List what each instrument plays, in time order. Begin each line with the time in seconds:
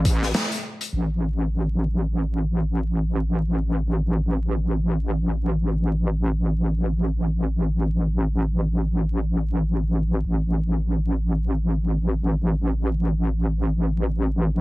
Already playing: wobble bass A1
0.05 kick, closed hi-hat
0.22 snare
0.34 snare, closed hi-hat
0.52 closed hi-hat
0.81 closed hi-hat
0.92 wobble bass A1
10.24 wobble bass A1